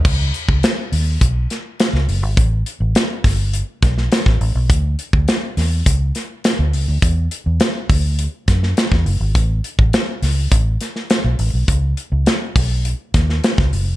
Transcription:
<<
  \new Staff \with { instrumentName = "Fingered electric bass" } { \clef bass \time 4/4 \key cis \minor \tempo 4 = 103 cis,8 r16 cis,16 r8 dis,8 b,,8 r8. cis,16 fis,,16 gis,,16 | a,,8 r16 a,,16 r8 g,,8. r16 b,,8 r16 a,,16 a,,16 b,,16 | d,8 r16 d,16 r8 e,8 cis,8 r8. d,16 cis,16 d,16 | e,8 r16 e,16 r8 d,8. r16 fis,8 r16 e,16 fis,,16 gis,,16 |
a,,8 r16 a,,16 r8 cis,8 a,,8 r8. b,,16 a,,16 b,,16 | cis,8 r16 cis,16 r8 b,,8. r16 dis,8 r16 cis,16 fis,,16 eis,,16 | }
  \new DrumStaff \with { instrumentName = "Drums" } \drummode { \time 4/4 <cymc bd>8 hh16 bd16 <hh sn>8 hho8 <hh bd>8 <hh sn>8 <hh sn>16 sn16 hho8 | <hh bd>8 hh8 <hh sn>8 <hho bd sn>8 hh8 <hh bd sn>16 sn16 <hh sn>16 <bd sn>16 hho8 | <hh bd>8 hh16 bd16 <hh sn>8 <hho sn>8 <hh bd>8 <hh sn>8 <hh sn>8 hho8 | <hh bd>8 hh8 <hh sn>8 <hho bd>8 hh8 <hh bd sn>16 sn16 <hh sn>16 <bd sn>16 hho8 |
<hh bd>8 hh16 bd16 <hh sn>8 <hho sn>8 <hh bd>8 <hh sn>16 sn16 <hh sn>8 hho8 | <hh bd>8 hh8 <hh sn>8 <hho bd>8 hh8 <hh bd sn>16 sn16 <hh sn>16 <bd sn>16 hho8 | }
>>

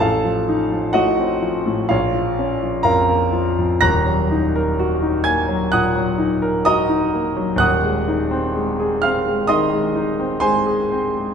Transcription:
<<
  \new Staff \with { instrumentName = "Grand piano" } { \time 4/4 \key aes \mixolydian \tempo 4 = 64 <a' f'' a''>4 <ges' ees'' ges''>4 <f' des'' f''>4 <bes' f'' bes''>8 r8 | <bes'' ges''' bes'''>4. <aes'' aes'''>8 <ges'' ees''' ges'''>4 <ees'' bes'' ees'''>4 | <ges'' ees''' ges'''>4. <f'' f'''>8 <ees'' c''' ees'''>4 <c'' aes'' c'''>4 | }
  \new Staff \with { instrumentName = "Grand piano" } { \clef bass \time 4/4 \key aes \mixolydian a,,16 f16 ees'16 f16 a,16 c'16 f16 a,16 bes,,16 f16 des'16 f16 f,16 bes16 f16 f,16 | <ees,, ees,>16 ges16 ees'16 bes'16 ges'16 ees'16 bes16 ges16 bes,16 ges16 ees'16 bes'16 ges'16 ees'16 bes16 ges16 | <ees,, ees,>16 aes16 ees'16 c'16 aes16 aes'16 c'16 aes16 ees16 aes16 ees'16 c'16 aes16 aes'16 c'16 aes16 | }
>>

